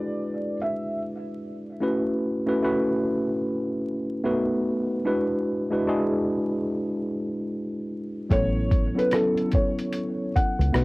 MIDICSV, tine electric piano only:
0, 0, Header, 1, 2, 480
1, 0, Start_track
1, 0, Tempo, 810811
1, 1075, Time_signature, 4, 2, 24, 8
1, 6420, End_track
2, 0, Start_track
2, 0, Title_t, "Tine electric piano"
2, 0, Program_c, 0, 4
2, 0, Control_c, 0, 64, 127
2, 0, Note_on_c, 0, 56, 68
2, 0, Note_on_c, 0, 62, 69
2, 0, Note_on_c, 0, 64, 61
2, 0, Note_on_c, 0, 66, 68
2, 0, Note_on_c, 0, 68, 77
2, 0, Note_on_c, 0, 71, 87
2, 338, Note_off_c, 0, 56, 0
2, 338, Note_off_c, 0, 62, 0
2, 340, Note_off_c, 0, 64, 0
2, 343, Note_off_c, 0, 66, 0
2, 345, Note_off_c, 0, 71, 0
2, 1068, Note_on_c, 0, 57, 86
2, 1075, Note_on_c, 0, 61, 84
2, 1076, Note_on_c, 0, 64, 79
2, 1080, Note_on_c, 0, 66, 80
2, 1083, Control_c, 0, 64, 0
2, 1083, Note_on_c, 0, 71, 100
2, 1088, Note_off_c, 0, 68, 0
2, 1172, Control_c, 0, 64, 127
2, 1338, Note_off_c, 0, 57, 0
2, 1341, Note_off_c, 0, 61, 0
2, 1342, Note_off_c, 0, 64, 0
2, 1344, Note_off_c, 0, 66, 0
2, 1345, Note_off_c, 0, 71, 0
2, 1458, Note_on_c, 0, 57, 83
2, 1461, Note_on_c, 0, 61, 82
2, 1462, Note_on_c, 0, 64, 73
2, 1470, Note_on_c, 0, 66, 76
2, 1472, Note_on_c, 0, 71, 98
2, 1527, Note_off_c, 0, 57, 0
2, 1529, Note_off_c, 0, 61, 0
2, 1530, Note_off_c, 0, 64, 0
2, 1533, Note_off_c, 0, 66, 0
2, 1534, Note_off_c, 0, 71, 0
2, 1553, Note_on_c, 0, 57, 91
2, 1558, Note_on_c, 0, 61, 82
2, 1561, Note_on_c, 0, 64, 78
2, 1563, Note_on_c, 0, 66, 84
2, 1566, Note_on_c, 0, 71, 95
2, 2256, Note_off_c, 0, 57, 0
2, 2258, Note_off_c, 0, 61, 0
2, 2260, Note_off_c, 0, 64, 0
2, 2261, Note_off_c, 0, 66, 0
2, 2263, Note_off_c, 0, 71, 0
2, 2508, Note_on_c, 0, 57, 101
2, 2511, Note_on_c, 0, 59, 90
2, 2514, Note_on_c, 0, 63, 81
2, 2518, Note_on_c, 0, 66, 92
2, 2520, Note_on_c, 0, 71, 99
2, 2521, Control_c, 0, 64, 0
2, 2642, Control_c, 0, 64, 127
2, 2918, Note_off_c, 0, 57, 0
2, 2919, Note_off_c, 0, 59, 0
2, 2920, Note_off_c, 0, 63, 0
2, 2923, Note_off_c, 0, 66, 0
2, 2924, Note_off_c, 0, 71, 0
2, 2986, Note_on_c, 0, 56, 80
2, 2989, Note_on_c, 0, 62, 80
2, 2992, Note_on_c, 0, 64, 79
2, 2997, Note_on_c, 0, 66, 75
2, 2999, Note_on_c, 0, 71, 97
2, 3002, Control_c, 0, 64, 0
2, 3111, Control_c, 0, 64, 127
2, 3257, Note_off_c, 0, 56, 0
2, 3258, Note_off_c, 0, 62, 0
2, 3260, Note_off_c, 0, 64, 0
2, 3262, Note_off_c, 0, 66, 0
2, 3263, Note_off_c, 0, 71, 0
2, 3376, Note_on_c, 0, 56, 82
2, 3381, Note_on_c, 0, 62, 77
2, 3384, Note_on_c, 0, 64, 82
2, 3385, Note_on_c, 0, 66, 77
2, 3391, Note_on_c, 0, 71, 85
2, 3446, Note_off_c, 0, 56, 0
2, 3449, Note_off_c, 0, 62, 0
2, 3450, Note_off_c, 0, 64, 0
2, 3451, Note_off_c, 0, 66, 0
2, 3454, Note_off_c, 0, 71, 0
2, 3474, Note_on_c, 0, 56, 91
2, 3477, Note_on_c, 0, 62, 86
2, 3480, Note_on_c, 0, 64, 83
2, 3483, Note_on_c, 0, 66, 80
2, 3486, Note_on_c, 0, 68, 102
2, 4177, Note_off_c, 0, 56, 0
2, 4178, Note_off_c, 0, 62, 0
2, 4180, Note_off_c, 0, 64, 0
2, 4181, Note_off_c, 0, 66, 0
2, 4183, Note_off_c, 0, 68, 0
2, 4912, Note_on_c, 0, 54, 68
2, 4915, Note_on_c, 0, 59, 62
2, 4921, Note_on_c, 0, 61, 65
2, 4922, Note_on_c, 0, 64, 62
2, 4923, Control_c, 0, 64, 0
2, 4926, Note_on_c, 0, 69, 74
2, 5025, Control_c, 0, 64, 127
2, 5180, Note_off_c, 0, 54, 0
2, 5181, Note_off_c, 0, 59, 0
2, 5184, Note_off_c, 0, 61, 0
2, 5185, Note_off_c, 0, 64, 0
2, 5187, Note_off_c, 0, 69, 0
2, 5296, Note_on_c, 0, 54, 70
2, 5301, Note_on_c, 0, 59, 67
2, 5304, Note_on_c, 0, 61, 64
2, 5305, Note_on_c, 0, 64, 61
2, 5312, Note_on_c, 0, 69, 73
2, 5366, Note_off_c, 0, 54, 0
2, 5369, Note_off_c, 0, 59, 0
2, 5370, Note_off_c, 0, 61, 0
2, 5371, Note_off_c, 0, 64, 0
2, 5374, Note_off_c, 0, 69, 0
2, 5396, Note_on_c, 0, 54, 81
2, 5400, Note_on_c, 0, 59, 65
2, 5404, Note_on_c, 0, 61, 64
2, 5407, Note_on_c, 0, 64, 68
2, 5412, Note_on_c, 0, 69, 86
2, 6098, Note_off_c, 0, 54, 0
2, 6100, Note_off_c, 0, 59, 0
2, 6102, Note_off_c, 0, 61, 0
2, 6103, Note_off_c, 0, 64, 0
2, 6106, Note_off_c, 0, 69, 0
2, 6348, Note_on_c, 0, 57, 80
2, 6350, Note_on_c, 0, 59, 70
2, 6355, Note_on_c, 0, 63, 73
2, 6357, Note_on_c, 0, 66, 75
2, 6362, Control_c, 0, 64, 0
2, 6365, Note_on_c, 0, 71, 92
2, 6420, Note_off_c, 0, 57, 0
2, 6420, Note_off_c, 0, 59, 0
2, 6420, Note_off_c, 0, 63, 0
2, 6420, Note_off_c, 0, 66, 0
2, 6420, Note_off_c, 0, 71, 0
2, 6420, End_track
0, 0, End_of_file